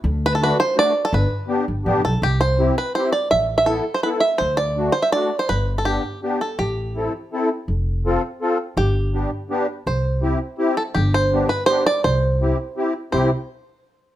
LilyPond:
<<
  \new Staff \with { instrumentName = "Five-string banjo" } { \time 3/4 \key g \major \tempo 4 = 165 r8 b'16 a'16 b'8 c''8 d''8. a'16 | b'2~ b'8 a'8 | \key c \major g'8 c''4 b'8 c''8 d''8 | e''8. e''16 a'8. c''16 b'8 e''8 |
c''8 d''4 c''16 e''16 d''8. c''16 | b'8. a'16 g'4 r8 a'8 | g'2.~ | g'2. |
g'2. | c''2 r8 a'8 | g'8 c''4 b'8 c''8 d''8 | c''2~ c''8 r8 |
c''8 r2 r8 | }
  \new Staff \with { instrumentName = "Accordion" } { \time 3/4 \key g \major r4 <a d' fis'>8 r8 <a d' fis'>8 r8 | r4 <b d' g'>8 r8 <b d' g'>8 r8 | \key c \major r4 <c' e' g'>8 r8 <c' e' g'>8 r8 | r4 <b e' a'>8 r8 <b e' a'>8 r8 |
r4 <a d' fis'>8 r8 <a d' fis'>8 r8 | r4 <b d' g'>8 r8 <b d' g'>8 r8 | r4 <c' e' a'>8 r8 <c' e' a'>8 r8 | r4 <c' f' a'>8 r8 <c' f' a'>8 r8 |
r4 <b d' g'>8 r8 <b d' g'>8 r8 | r4 <c' e' g'>8 r8 <c' e' g'>8 r8 | r4 <b d' g'>8 r8 <b d' g'>8 r8 | r4 <c' e' g'>8 r8 <c' e' g'>8 r8 |
<c' e' g'>8 r2 r8 | }
  \new Staff \with { instrumentName = "Upright bass" } { \clef bass \time 3/4 \key g \major d,2 r4 | g,,8 r4 g,,8 a,,8 b,,8 | \key c \major c,2 r4 | a,,2 r4 |
d,2 r4 | g,,2 r4 | a,,2 r4 | f,,2 r4 |
g,,2 r4 | c,2 r4 | g,,2 r4 | c,2 r4 |
c,8 r2 r8 | }
>>